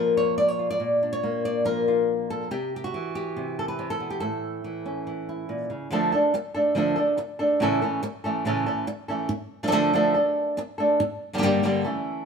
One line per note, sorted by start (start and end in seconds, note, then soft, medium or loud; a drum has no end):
0.00 0.77 A#2 medium
0.00 0.78 F3 medium
0.00 0.77 A#3 medium
0.00 0.17 A4 medium
0.00 0.16 A#4 medium
0.17 0.37 C#5 medium
0.38 0.48 D5 medium
0.48 0.70 C#5 medium
0.59 0.78 F4 soft
0.71 1.12 D5 medium
0.80 2.48 A#2 medium
1.03 2.49 D4 soft
1.13 1.44 C#5 medium
1.23 2.48 A#3 medium
1.45 1.65 D5 medium
1.65 2.48 F3 soft
1.65 2.50 A#4 loud
1.88 2.30 F4 soft
2.30 2.51 A4 medium
2.51 2.93 C3 medium
2.51 2.75 G4 medium
2.76 3.14 G4 medium
2.84 3.58 F#4 medium
2.94 4.63 E3 medium
3.15 4.00 G4 medium
3.37 3.78 C3 medium
3.59 3.68 A4 medium
3.68 3.89 B4 medium
3.79 4.00 C3 medium
3.90 4.19 A4 medium
4.00 4.21 B2 soft
4.10 4.21 G4 medium
4.20 5.49 A2 medium
4.20 5.91 A4 medium
4.64 5.06 E3 medium
4.86 5.89 C#4 soft
5.07 5.69 E3 medium
5.29 5.89 E4 soft
5.49 5.70 A#2 medium
5.70 5.90 C#3 soft
5.91 6.11 D3 medium
5.91 6.12 F3 medium
5.91 6.12 A3 medium
5.91 6.12 D4 medium
5.91 6.11 A4 medium
6.12 6.33 A3 soft
6.12 6.33 D4 medium
6.12 6.33 A4 medium
6.34 muted nylon-string guitar stroke medium
6.54 6.75 A3 soft
6.54 6.76 D4 medium
6.54 6.75 A4 medium
6.75 6.96 D3 medium
6.75 6.96 F3 medium
6.75 6.97 A3 medium
6.75 6.96 D4 medium
6.75 6.95 A4 medium
6.96 7.17 A3 soft
6.96 7.17 D4 soft
6.96 7.17 A4 medium
7.17 muted nylon-string guitar stroke medium
7.39 7.60 A3 soft
7.39 7.60 D4 medium
7.39 7.60 A4 medium
7.60 7.81 A2 medium
7.60 7.81 C#3 medium
7.60 7.82 E3 medium
7.60 7.82 A3 medium
7.60 7.81 C#4 medium
7.60 7.81 A4 loud
7.82 8.01 E3 soft
7.82 8.02 A3 soft
7.82 8.02 C#4 medium
7.82 8.02 A4 medium
8.03 muted nylon-string guitar stroke medium
8.24 8.45 E3 soft
8.24 8.45 A3 soft
8.24 8.45 C#4 medium
8.24 8.45 A4 medium
8.45 8.66 A2 medium
8.45 8.66 C#3 medium
8.45 8.66 E3 medium
8.45 8.67 A3 medium
8.45 8.66 C#4 medium
8.45 8.65 A4 medium
8.66 8.86 E3 soft
8.66 8.86 A3 soft
8.66 8.87 C#4 medium
8.66 8.87 A4 medium
8.87 muted nylon-string guitar stroke medium
9.08 9.31 E3 soft
9.08 9.30 A3 medium
9.08 9.30 C#4 medium
9.08 9.29 A4 medium
9.29 muted nylon-string guitar stroke medium
9.63 9.66 F3 medium
9.63 9.67 A3 medium
9.63 9.67 D4 medium
9.63 9.67 A4 medium
9.68 9.71 F3 medium
9.68 9.71 A3 medium
9.68 9.71 D4 medium
9.68 9.72 A4 medium
9.72 9.92 D3 loud
9.72 9.92 F3 medium
9.72 9.93 A3 loud
9.72 9.93 D4 loud
9.72 9.94 A4 medium
9.93 10.14 D3 medium
9.93 10.14 F3 medium
9.93 10.15 A3 medium
9.93 10.14 D4 medium
9.93 10.13 A4 medium
10.14 10.57 A3 soft
10.14 10.57 D4 soft
10.14 10.57 A4 soft
10.57 muted nylon-string guitar stroke medium
10.78 11.00 A3 soft
10.78 11.00 D4 medium
10.78 10.99 A4 medium
11.00 muted nylon-string guitar stroke medium
11.33 11.37 D3 medium
11.33 11.37 G3 medium
11.33 11.37 A#3 medium
11.33 11.38 D4 medium
11.33 11.38 G4 medium
11.38 11.42 D3 medium
11.38 11.42 G3 medium
11.38 11.42 A#3 medium
11.38 11.42 D4 medium
11.38 11.43 G4 medium
11.43 11.62 G2 medium
11.43 11.62 D3 medium
11.43 11.63 G3 medium
11.43 11.63 A#3 medium
11.43 11.63 D4 medium
11.43 11.64 G4 medium
11.63 11.84 G2 medium
11.63 11.84 D3 medium
11.63 11.85 G3 medium
11.63 11.85 A#3 medium
11.63 11.85 D4 medium
11.63 11.84 G4 loud
11.85 12.25 E3 soft
11.85 12.25 A3 soft
11.85 12.25 C#4 soft
11.85 12.25 A4 medium